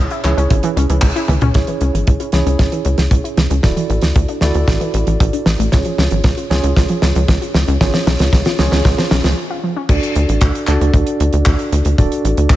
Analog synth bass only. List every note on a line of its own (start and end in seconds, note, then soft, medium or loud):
0.24 0.34 C#2 medium
0.37 0.47 C#2 medium
0.51 0.61 G#1 loud
0.76 0.87 C#2 loud
0.89 1.00 C#2 medium
1.02 1.13 C#2 loud
1.29 1.39 C#2 medium
1.42 1.52 C#2 medium
1.55 1.65 C#2 loud
1.81 1.91 C#2 medium
1.94 2.04 G#1 medium
2.08 2.17 C#2 loud
2.33 2.43 C#2 loud
2.46 2.56 C#2 medium
2.59 2.69 C#2 loud
2.85 2.95 C#2 medium
2.98 3.08 C#2 medium
3.11 3.21 C#2 loud
3.37 3.48 C#2 medium
3.50 3.61 C#2 medium
3.64 3.74 D1 loud
3.90 4.00 A1 medium
4.03 4.13 D2 medium
4.16 4.26 D2 loud
4.42 4.52 D2 medium
4.55 4.65 D2 medium
4.68 4.78 A1 loud
4.94 5.04 A1 loud
5.07 5.17 A1 medium
5.20 5.30 A1 loud
5.46 5.56 A1 medium
5.59 5.69 A1 medium
5.74 5.83 C#2 loud
5.98 6.08 C#2 loud
6.11 6.21 G#1 medium
6.24 6.34 C#2 loud
6.50 6.61 C#2 loud
6.64 6.74 C#2 medium
6.76 6.87 C#2 loud
7.03 7.13 C#2 loud
7.16 7.26 C#2 medium
7.28 7.39 C#2 loud
7.55 7.65 C#2 medium
7.68 7.78 C#2 medium
7.81 7.91 G#1 loud
8.07 8.17 B1 medium
8.20 8.30 C#2 medium
8.33 8.43 C#2 loud
8.59 8.69 C#2 loud
8.72 8.82 C#2 medium
8.85 8.95 C#2 loud
9.11 9.21 B1 loud
9.24 9.35 C#2 medium
9.89 10.00 D2 loud
10.16 10.26 D2 loud
10.29 10.39 A1 medium
10.42 10.52 D2 loud
10.68 10.78 D2 loud
10.81 10.91 D2 medium
10.94 11.04 D2 loud
11.20 11.30 D2 medium
11.33 11.43 D2 medium
11.46 11.56 D2 loud
11.72 11.82 D2 medium
11.85 11.95 D2 medium
11.98 12.08 D1 loud
12.24 12.35 A1 medium
12.37 12.48 D2 medium
12.50 12.56 D2 loud